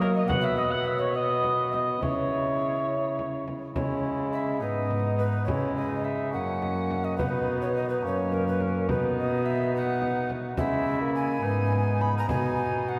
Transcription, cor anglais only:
0, 0, Header, 1, 2, 480
1, 0, Start_track
1, 0, Tempo, 575264
1, 248, Time_signature, 6, 3, 24, 8
1, 4569, Tempo, 567644
1, 10926, End_track
2, 0, Start_track
2, 0, Title_t, "Cor anglais"
2, 0, Program_c, 0, 69
2, 11, Note_on_c, 0, 70, 107
2, 64, Note_off_c, 0, 70, 0
2, 139, Note_on_c, 0, 75, 97
2, 236, Note_off_c, 0, 75, 0
2, 241, Note_on_c, 0, 78, 114
2, 372, Note_on_c, 0, 76, 110
2, 384, Note_off_c, 0, 78, 0
2, 473, Note_off_c, 0, 76, 0
2, 478, Note_on_c, 0, 75, 110
2, 596, Note_on_c, 0, 78, 98
2, 608, Note_off_c, 0, 75, 0
2, 720, Note_off_c, 0, 78, 0
2, 725, Note_on_c, 0, 76, 96
2, 840, Note_off_c, 0, 76, 0
2, 845, Note_on_c, 0, 73, 97
2, 962, Note_off_c, 0, 73, 0
2, 966, Note_on_c, 0, 75, 103
2, 1438, Note_off_c, 0, 75, 0
2, 1460, Note_on_c, 0, 75, 95
2, 1686, Note_off_c, 0, 75, 0
2, 1691, Note_on_c, 0, 73, 94
2, 2876, Note_off_c, 0, 73, 0
2, 3133, Note_on_c, 0, 64, 68
2, 3850, Note_on_c, 0, 63, 66
2, 3862, Note_off_c, 0, 64, 0
2, 4557, Note_off_c, 0, 63, 0
2, 4562, Note_on_c, 0, 64, 72
2, 4921, Note_on_c, 0, 63, 65
2, 4934, Note_off_c, 0, 64, 0
2, 5275, Note_on_c, 0, 61, 69
2, 5288, Note_off_c, 0, 63, 0
2, 5997, Note_off_c, 0, 61, 0
2, 6002, Note_on_c, 0, 63, 71
2, 6729, Note_on_c, 0, 61, 74
2, 6742, Note_off_c, 0, 63, 0
2, 7456, Note_on_c, 0, 63, 75
2, 7469, Note_off_c, 0, 61, 0
2, 8173, Note_off_c, 0, 63, 0
2, 8183, Note_on_c, 0, 63, 78
2, 8651, Note_off_c, 0, 63, 0
2, 8880, Note_on_c, 0, 64, 80
2, 9606, Note_on_c, 0, 63, 79
2, 9618, Note_off_c, 0, 64, 0
2, 10323, Note_off_c, 0, 63, 0
2, 10328, Note_on_c, 0, 63, 82
2, 10926, Note_off_c, 0, 63, 0
2, 10926, End_track
0, 0, End_of_file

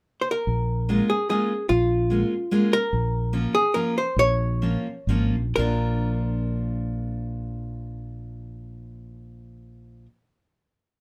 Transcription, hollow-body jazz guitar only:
0, 0, Header, 1, 2, 480
1, 0, Start_track
1, 0, Tempo, 408163
1, 552, Time_signature, 3, 2, 24, 8
1, 3911, Tempo, 427960
1, 5351, Tempo, 480384
1, 6311, Tempo, 506329
1, 11461, End_track
2, 0, Start_track
2, 0, Title_t, "Hollow-body jazz guitar"
2, 0, Program_c, 0, 26
2, 252, Note_on_c, 0, 72, 49
2, 335, Note_off_c, 0, 72, 0
2, 366, Note_on_c, 0, 70, 65
2, 1289, Note_on_c, 0, 68, 57
2, 1342, Note_off_c, 0, 70, 0
2, 1514, Note_off_c, 0, 68, 0
2, 1528, Note_on_c, 0, 68, 58
2, 1984, Note_off_c, 0, 68, 0
2, 1989, Note_on_c, 0, 65, 69
2, 3213, Note_on_c, 0, 70, 80
2, 3246, Note_off_c, 0, 65, 0
2, 4158, Note_on_c, 0, 68, 76
2, 4190, Note_off_c, 0, 70, 0
2, 4378, Note_on_c, 0, 70, 70
2, 4382, Note_off_c, 0, 68, 0
2, 4617, Note_off_c, 0, 70, 0
2, 4642, Note_on_c, 0, 72, 68
2, 4866, Note_off_c, 0, 72, 0
2, 4882, Note_on_c, 0, 73, 97
2, 6054, Note_off_c, 0, 73, 0
2, 6297, Note_on_c, 0, 70, 73
2, 10563, Note_off_c, 0, 70, 0
2, 11461, End_track
0, 0, End_of_file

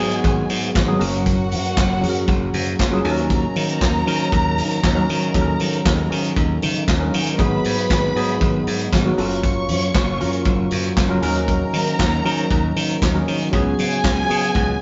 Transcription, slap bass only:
0, 0, Header, 1, 2, 480
1, 0, Start_track
1, 0, Tempo, 511073
1, 1186, Time_signature, 4, 2, 24, 8
1, 13915, End_track
2, 0, Start_track
2, 0, Title_t, "Slap bass"
2, 0, Program_c, 0, 36
2, 0, Note_on_c, 0, 44, 88
2, 178, Note_off_c, 0, 44, 0
2, 230, Note_on_c, 0, 32, 90
2, 420, Note_off_c, 0, 32, 0
2, 463, Note_on_c, 0, 44, 89
2, 656, Note_off_c, 0, 44, 0
2, 708, Note_on_c, 0, 32, 112
2, 899, Note_off_c, 0, 32, 0
2, 943, Note_on_c, 0, 30, 89
2, 1428, Note_on_c, 0, 42, 91
2, 1442, Note_off_c, 0, 30, 0
2, 1619, Note_off_c, 0, 42, 0
2, 1668, Note_on_c, 0, 30, 98
2, 1902, Note_on_c, 0, 42, 82
2, 1916, Note_off_c, 0, 30, 0
2, 2095, Note_off_c, 0, 42, 0
2, 2143, Note_on_c, 0, 30, 94
2, 2335, Note_off_c, 0, 30, 0
2, 2382, Note_on_c, 0, 42, 95
2, 2574, Note_off_c, 0, 42, 0
2, 2624, Note_on_c, 0, 30, 94
2, 2816, Note_off_c, 0, 30, 0
2, 2861, Note_on_c, 0, 39, 95
2, 3245, Note_off_c, 0, 39, 0
2, 3344, Note_on_c, 0, 51, 82
2, 3581, Note_on_c, 0, 39, 95
2, 3595, Note_off_c, 0, 51, 0
2, 3773, Note_off_c, 0, 39, 0
2, 3822, Note_on_c, 0, 51, 92
2, 4014, Note_off_c, 0, 51, 0
2, 4063, Note_on_c, 0, 39, 93
2, 4309, Note_on_c, 0, 51, 99
2, 4323, Note_off_c, 0, 39, 0
2, 4498, Note_off_c, 0, 51, 0
2, 4546, Note_on_c, 0, 39, 97
2, 4736, Note_off_c, 0, 39, 0
2, 4786, Note_on_c, 0, 51, 86
2, 4976, Note_off_c, 0, 51, 0
2, 5022, Note_on_c, 0, 39, 104
2, 5214, Note_off_c, 0, 39, 0
2, 5263, Note_on_c, 0, 51, 76
2, 5454, Note_off_c, 0, 51, 0
2, 5504, Note_on_c, 0, 39, 108
2, 5695, Note_off_c, 0, 39, 0
2, 5746, Note_on_c, 0, 51, 87
2, 5936, Note_off_c, 0, 51, 0
2, 5979, Note_on_c, 0, 39, 80
2, 6172, Note_off_c, 0, 39, 0
2, 6225, Note_on_c, 0, 51, 103
2, 6415, Note_off_c, 0, 51, 0
2, 6462, Note_on_c, 0, 39, 100
2, 6653, Note_off_c, 0, 39, 0
2, 6707, Note_on_c, 0, 51, 95
2, 6896, Note_off_c, 0, 51, 0
2, 6941, Note_on_c, 0, 32, 95
2, 7133, Note_off_c, 0, 32, 0
2, 7187, Note_on_c, 0, 44, 90
2, 7376, Note_off_c, 0, 44, 0
2, 7423, Note_on_c, 0, 32, 95
2, 7614, Note_off_c, 0, 32, 0
2, 7662, Note_on_c, 0, 44, 89
2, 7853, Note_off_c, 0, 44, 0
2, 7904, Note_on_c, 0, 32, 89
2, 8094, Note_off_c, 0, 32, 0
2, 8144, Note_on_c, 0, 44, 90
2, 8334, Note_off_c, 0, 44, 0
2, 8386, Note_on_c, 0, 32, 117
2, 8575, Note_off_c, 0, 32, 0
2, 8628, Note_on_c, 0, 30, 92
2, 9102, Note_on_c, 0, 42, 92
2, 9116, Note_off_c, 0, 30, 0
2, 9293, Note_off_c, 0, 42, 0
2, 9343, Note_on_c, 0, 30, 97
2, 9584, Note_on_c, 0, 42, 91
2, 9598, Note_off_c, 0, 30, 0
2, 9775, Note_off_c, 0, 42, 0
2, 9822, Note_on_c, 0, 30, 82
2, 10013, Note_off_c, 0, 30, 0
2, 10065, Note_on_c, 0, 42, 94
2, 10255, Note_off_c, 0, 42, 0
2, 10304, Note_on_c, 0, 30, 97
2, 10494, Note_off_c, 0, 30, 0
2, 10541, Note_on_c, 0, 39, 85
2, 10924, Note_off_c, 0, 39, 0
2, 11020, Note_on_c, 0, 51, 74
2, 11212, Note_off_c, 0, 51, 0
2, 11265, Note_on_c, 0, 39, 93
2, 11455, Note_off_c, 0, 39, 0
2, 11506, Note_on_c, 0, 51, 97
2, 11696, Note_off_c, 0, 51, 0
2, 11747, Note_on_c, 0, 39, 100
2, 11936, Note_off_c, 0, 39, 0
2, 11988, Note_on_c, 0, 51, 99
2, 12177, Note_off_c, 0, 51, 0
2, 12230, Note_on_c, 0, 39, 102
2, 12418, Note_off_c, 0, 39, 0
2, 12469, Note_on_c, 0, 51, 86
2, 12658, Note_off_c, 0, 51, 0
2, 12708, Note_on_c, 0, 37, 101
2, 12898, Note_off_c, 0, 37, 0
2, 12954, Note_on_c, 0, 49, 82
2, 13141, Note_off_c, 0, 49, 0
2, 13190, Note_on_c, 0, 37, 97
2, 13379, Note_off_c, 0, 37, 0
2, 13435, Note_on_c, 0, 49, 93
2, 13622, Note_off_c, 0, 49, 0
2, 13668, Note_on_c, 0, 37, 84
2, 13858, Note_off_c, 0, 37, 0
2, 13915, End_track
0, 0, End_of_file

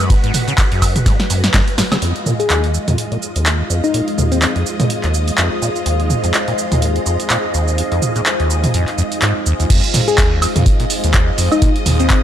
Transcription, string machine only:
0, 0, Header, 1, 2, 480
1, 0, Start_track
1, 0, Key_signature, -4, "minor"
1, 0, Tempo, 480000
1, 101, Time_signature, 4, 2, 24, 8
1, 12232, End_track
2, 0, Start_track
2, 0, Title_t, "String machine"
2, 0, Program_c, 0, 50
2, 0, Note_on_c, 0, 56, 83
2, 0, Note_on_c, 0, 66, 78
2, 0, Note_on_c, 0, 71, 91
2, 1980, Note_off_c, 0, 56, 0
2, 1980, Note_off_c, 0, 66, 0
2, 1980, Note_off_c, 0, 71, 0
2, 2020, Note_on_c, 0, 56, 77
2, 2020, Note_on_c, 0, 65, 75
2, 2020, Note_on_c, 0, 75, 85
2, 9660, Note_off_c, 0, 56, 0
2, 9660, Note_off_c, 0, 65, 0
2, 9660, Note_off_c, 0, 75, 0
2, 9702, Note_on_c, 0, 65, 75
2, 9702, Note_on_c, 0, 75, 93
2, 9703, Note_on_c, 0, 56, 79
2, 12232, Note_off_c, 0, 56, 0
2, 12232, Note_off_c, 0, 65, 0
2, 12232, Note_off_c, 0, 75, 0
2, 12232, End_track
0, 0, End_of_file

